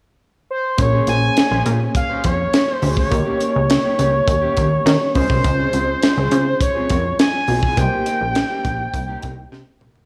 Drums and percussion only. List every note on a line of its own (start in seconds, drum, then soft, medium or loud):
0.78 kick loud
0.78 closed hi-hat medium
1.07 closed hi-hat medium
1.37 snare loud
1.37 closed hi-hat medium
1.66 closed hi-hat medium
1.95 kick loud
1.95 closed hi-hat medium
2.24 kick medium
2.24 closed hi-hat medium
2.54 snare loud
2.54 closed hi-hat medium
2.82 open hi-hat medium
2.97 kick medium
3.12 kick loud
3.12 closed hi-hat medium
3.40 closed hi-hat medium
3.70 snare loud
3.70 closed hi-hat medium
3.99 closed hi-hat medium
4.28 kick loud
4.28 closed hi-hat medium
4.57 kick medium
4.57 closed hi-hat medium
4.87 snare loud
4.87 closed hi-hat medium
5.15 kick medium
5.15 open hi-hat medium
5.30 kick loud
5.44 kick loud
5.44 closed hi-hat medium
5.73 closed hi-hat medium
6.03 snare loud
6.03 closed hi-hat medium
6.31 closed hi-hat medium
6.61 kick loud
6.61 closed hi-hat medium
6.90 kick medium
6.90 closed hi-hat medium
7.19 snare loud
7.19 closed hi-hat medium
7.48 open hi-hat medium
7.63 kick medium
7.77 kick loud
7.77 closed hi-hat medium
8.06 closed hi-hat medium
8.35 snare loud
8.35 closed hi-hat medium
8.65 kick loud
8.65 closed hi-hat medium
8.94 kick loud
8.94 closed hi-hat loud
9.22 kick medium
9.22 closed hi-hat medium
9.53 snare medium
9.81 mid tom medium
9.96 floor tom loud